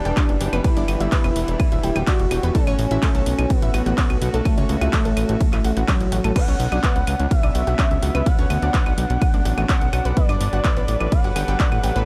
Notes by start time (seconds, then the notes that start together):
Already playing: E3 G3 B3 D4 F#5
0.05 E1 G4 G5, closed hi-hat
0.17 D4 D5, kick, clap, closed hi-hat, ride, claves
0.29 F#1, closed hi-hat
0.41 F#1 G4 G5, open hi-hat
0.53 F#1 B3 B4, closed hi-hat, claves
0.64 B3 E4 B4, kick, closed hi-hat, ride
0.77 G1 D4 D5, closed hi-hat
0.88 G1, open hi-hat, claves
1.00 G1 E4 E5, closed hi-hat
1.12 B3 B4, kick, clap, closed hi-hat, ride
1.24 E1 B3 B4, closed hi-hat, claves
1.36 E1, open hi-hat
1.48 E1, closed hi-hat
1.60 kick, closed hi-hat, ride, claves
1.72 D1 E4 E5, closed hi-hat
1.83 D1 G4 G5, open hi-hat
1.96 D1 G4 G5, closed hi-hat, claves
2.07 D4 F#4 D5, kick, clap, closed hi-hat, ride
2.20 E1, closed hi-hat
2.31 E1 G4 G5, open hi-hat, claves
2.43 E1 B3 B4, closed hi-hat
2.55 A3 C#4 F#4 A4, kick, closed hi-hat, ride
2.67 A1 C#4 C#5, closed hi-hat, claves
2.79 A1, open hi-hat
2.91 A1 E4 E5, closed hi-hat
3.03 A3 A4, kick, clap, closed hi-hat, ride, claves
3.15 B1 A3 A4, closed hi-hat
3.26 B1, open hi-hat
3.39 B1, closed hi-hat, claves
3.50 B3, kick, closed hi-hat, ride
3.62 A1 E4 E5, closed hi-hat
3.74 A1 F#4 F#5, open hi-hat, claves
3.86 A1 F#4 F#5, closed hi-hat
3.98 C#4 C#5, kick, clap, closed hi-hat, ride
4.10 B1, closed hi-hat, claves
4.22 B1 F#4 F#5, open hi-hat
4.34 B1 A3 A4, closed hi-hat
4.45 A3 A4, kick, closed hi-hat, ride, claves
4.58 C#2 C#4 C#5, closed hi-hat
4.69 C#2, open hi-hat
4.81 C#2 E4 E5, closed hi-hat, claves
4.93 A3 A4, kick, clap, closed hi-hat, ride
5.05 A1 A3 A4, closed hi-hat
5.17 A1, open hi-hat, claves
5.29 A1, closed hi-hat
5.41 kick, closed hi-hat, ride
5.53 A1 E4 E5, clap, closed hi-hat, claves
5.64 A1 F#4 F#5, open hi-hat
5.77 A1 F#4 F#5, closed hi-hat
5.88 F#3 C#4 C#5, kick, clap, closed hi-hat, ride, claves
6.00 A1, closed hi-hat
6.12 A1 F#4 F#5, open hi-hat
6.24 A1 A3 A4, closed hi-hat, claves
6.36 B2 F#3 B3 C#4 D4 B4 F#5, kick, closed hi-hat, ride, crash, claves
6.48 B1 C#4 C#5, closed hi-hat
6.60 B1, open hi-hat
6.72 B1 D4 D5, closed hi-hat, claves
6.83 B3 B4, kick, clap, closed hi-hat, ride
6.96 C#2 B3 B4, closed hi-hat
7.07 C#2, open hi-hat, claves
7.20 C#2, closed hi-hat
7.31 E5, kick, closed hi-hat, ride
7.43 B1 D4 D5, closed hi-hat, claves
7.55 B1 F#4 F#5, open hi-hat
7.67 B1 F#4 F#5, closed hi-hat
7.79 C#4 C#5, kick, clap, closed hi-hat, ride, claves
7.91 C#2, closed hi-hat
8.03 C#2 F#4 F#5, open hi-hat
8.15 C#2 B3 B4, closed hi-hat, claves
8.26 B3 B4 F#5, kick, closed hi-hat, ride
8.39 D2 C#4 C#5, closed hi-hat
8.50 D2, open hi-hat, claves
8.62 D2 D4 D5, closed hi-hat
8.74 B3 B4, kick, clap, closed hi-hat, ride
8.86 B1 B3 B4, closed hi-hat, claves
8.98 B1, open hi-hat
9.10 B1, closed hi-hat
9.22 kick, closed hi-hat, ride, claves
9.34 A1 D4 D5, closed hi-hat
9.45 A1 F#4 F#5, open hi-hat
9.58 A1 F#4 F#5, closed hi-hat, claves
9.69 C#4 C#5 F#5, kick, clap, open hi-hat, ride
9.81 B1, closed hi-hat
9.93 B1 F#4 F#5, open hi-hat, claves
10.05 B1 B3 B4, closed hi-hat
10.17 F#3 B3 A4 B4 D5, kick, closed hi-hat, ride
10.29 G1 D4 D5, closed hi-hat, claves
10.41 G1, open hi-hat
10.53 G1 F#4 F#5, closed hi-hat
10.64 B3 B4, kick, clap, closed hi-hat, ride, claves
10.77 A1 B3 B4, closed hi-hat
10.88 A1, open hi-hat
11.00 A1, closed hi-hat, claves
11.12 F#5, kick, closed hi-hat, ride
11.24 G1 F#4 F#5, closed hi-hat
11.36 G1 G4 G5, open hi-hat, claves
11.48 G1 G4 G5, closed hi-hat
11.60 D4 D5, kick, clap, closed hi-hat, ride
11.72 A1, closed hi-hat, claves
11.83 A1 G4 G5, open hi-hat
11.96 A1 B3 B4, closed hi-hat